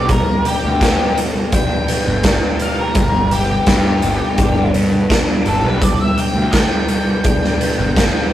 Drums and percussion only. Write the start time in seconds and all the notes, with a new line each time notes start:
0.09 kick, closed hi-hat
0.45 closed hi-hat
0.81 kick, snare, closed hi-hat
1.17 closed hi-hat
1.52 kick, closed hi-hat
1.88 closed hi-hat
2.23 kick, snare, closed hi-hat
2.59 closed hi-hat
2.95 kick, closed hi-hat
3.31 closed hi-hat
3.66 kick, snare, closed hi-hat
4.02 closed hi-hat
4.38 kick, closed hi-hat
4.74 closed hi-hat
5.10 kick, snare, closed hi-hat
5.46 closed hi-hat
5.82 kick, closed hi-hat
6.18 closed hi-hat
6.53 kick, snare, closed hi-hat
6.88 closed hi-hat
7.24 kick, closed hi-hat
7.44 snare
7.61 closed hi-hat
7.96 kick, snare, closed hi-hat